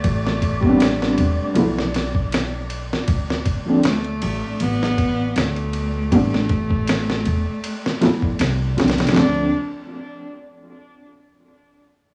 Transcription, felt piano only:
X:1
M:4/4
L:1/16
Q:"Swing 16ths" 1/4=79
K:Ddor
V:1 name="Felt piano"
z3 [G,B,CD]4- [G,B,CD] [F,A,B,E] z6 z | z3 [F,A,CD] z12 | [G,B,CD] z8 z [F,A,B,E] z3 [F,A,CD]2 | [F,A,CD]2 z12 z2 |]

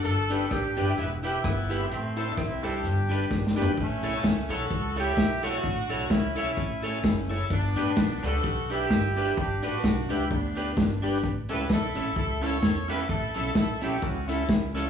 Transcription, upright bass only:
X:1
M:4/4
L:1/8
Q:"Swing" 1/4=129
K:G
V:1 name="Upright bass" clef=bass
G,,,2 A,,, G,,, E,,,2 G,,,2 | A,,,2 B,,, C,, G,,,2 G,,,2 | [K:Amix] A,,, B,,, C,, B,,, C,,2 B,,,2 | A,,, B,,, C,, B,,, A,,,2 F,,,2 |
G,,, A,,, B,,, C,, B,,,2 G,,,2 | G,,, A,,, B,,, C,, D,,2 G,,,2 | A,,, C,, B,,, A,,, C,,2 E,,2 | A,,, B,,, A,,, B,,, C,,2 C,,2 |]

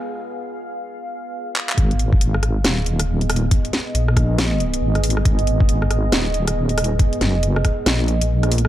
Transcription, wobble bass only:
X:1
M:4/4
L:1/8
Q:"Swing 16ths" 1/4=138
K:G#dor
V:1 name="Wobble bass" clef=bass
z8 | G,,,4 D,,,4 | z2 A,,,4 G,,,2 | G,,,4 D,,,4 |
z F,,,2 z A,,,4 |]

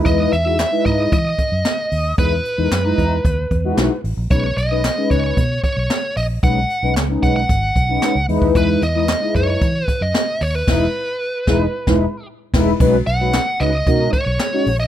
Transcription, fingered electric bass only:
X:1
M:4/4
L:1/16
Q:1/4=113
K:B
V:1 name="Fingered electric bass" clef=bass
E,,2 E,,3 z G,,2 E,2 z F,, z2 D,,2 | E,,2 z E,, F,,2 E,,2 D,,2 E,,2 B,,, z =A,,, ^A,,, | B,,,2 B,,,3 z C,,2 B,,2 z B,,, z2 A,,,2 | B,,,2 z B,,, C,,2 B,,,2 G,,,2 B,,,2 z C,, E,, D,, |
E,,2 E,,3 z F,,2 E,2 z F,, z2 D,,2 | E,,,2 z4 E,,,2 z E,,,2 z3 E,,,2 | B,,,2 B,,,3 z C,,2 B,,2 z B,,, z2 A,,,2 |]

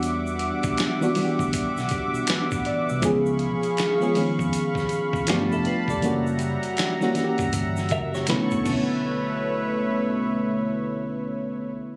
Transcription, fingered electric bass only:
X:1
M:4/4
L:1/16
Q:"Swing 16ths" 1/4=80
K:Bm
V:1 name="Fingered electric bass" clef=bass
E,,3 z4 D,, z B,,,2 z2 A,,, z =C,, | z6 z ^E,, z4 G,,, =F,,, z F,,, | F,,,3 z4 G,,,3 F,,,2 B,,, z B,,,2- | B,,,16 |]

